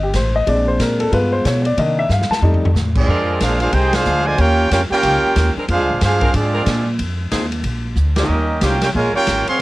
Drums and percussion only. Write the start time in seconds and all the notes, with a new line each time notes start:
0.14 kick, snare, hi-hat pedal, ride
0.47 kick, ride
0.80 kick, snare, hi-hat pedal, ride
1.00 ride
1.12 kick, ride
1.45 kick, snare, hi-hat pedal, ride
1.65 ride
1.78 kick, ride
2.10 snare, hi-hat pedal
2.22 snare
2.32 snare
2.43 floor tom
2.54 floor tom
2.65 floor tom
2.76 snare, hi-hat pedal
2.95 kick, crash
3.41 kick, snare, hi-hat pedal, ride
3.60 ride
3.73 kick, ride
3.93 snare, ride
4.05 hi-hat pedal
4.38 kick, ride
4.71 kick, snare, hi-hat pedal, ride
5.03 kick, ride
5.36 kick, snare, hi-hat pedal, ride
5.68 kick, ride
6.01 kick, snare, hi-hat pedal, ride
6.21 kick, ride
6.34 kick, ride
6.66 kick, snare, hi-hat pedal, ride
6.99 kick, ride
7.31 kick, snare, hi-hat pedal, ride
7.52 ride
7.64 kick, ride
7.96 hi-hat pedal
8.16 snare, ride
8.61 kick, snare, hi-hat pedal, ride
8.81 snare, ride
8.95 kick
9.27 kick, snare, hi-hat pedal, ride
9.47 ride